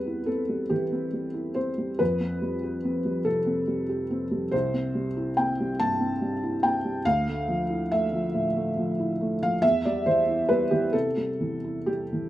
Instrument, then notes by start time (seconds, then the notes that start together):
felt piano
Already playing: E2 G3 C4 B4
0.07 E4
0.26 C4 A4
0.49 G3
0.70 E3 G4
0.92 C4
1.13 G3
1.34 E4
1.55 C4 C5
1.78 G3
1.99 F2 B4
2.20 C4
2.42 G3
2.63 G4
2.84 C4
3.05 G3
3.25 C3 A4
3.47 C4
3.67 G3
3.89 G4
4.11 C4
4.31 G3
4.51 C2 C5
4.74 C4
4.95 G3
5.17 E4
5.37 C4 G5
5.60 G3
5.80 G2 A5
6.00 C4
6.22 G3
6.43 E4
6.63 C4 G5
6.85 G3
7.05 D2 F5
7.28 A3
7.48 F3
7.70 E4
7.92 A3 E5
8.13 F3
8.34 A2
8.56 A3
8.77 F3
8.99 E4
9.21 A3
9.43 F3 F5
9.62 E2 E5
9.85 G3 D5
10.06 E3 C5
10.28 E4
10.49 G3 B4
10.71 E3 G4
10.93 C3 A4
11.17 G3
11.40 E3
11.64 E4
11.86 G3 G4
12.13 E3